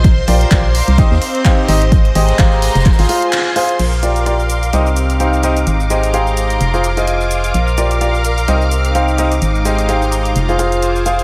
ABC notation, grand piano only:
X:1
M:4/4
L:1/16
Q:"Swing 16ths" 1/4=128
K:Bbmix
V:1 name="Grand piano"
z2 [FGBd]2 [FGBd] z3 [EGce] z3 [EGcf]2 [EGce] z | z2 [GAce]2 [GAcf]4 z [FAcf] [FAcf]4 [FAcf]2 | z2 [FGBd]2 [FGBd] z3 [EGce] z3 [EGcf]2 [EGce] z | z2 [GAce]2 [GAcf]4 z [FAcf] z [FAce]4- [FAce] |
z2 [FGBd]2 [FGBd] z3 [EGce] z3 [EGcf]2 [EGce] z | z2 [GAce]2 [GAcf]4 z [FAcf] [FAcf]4 [FAcf]2 |]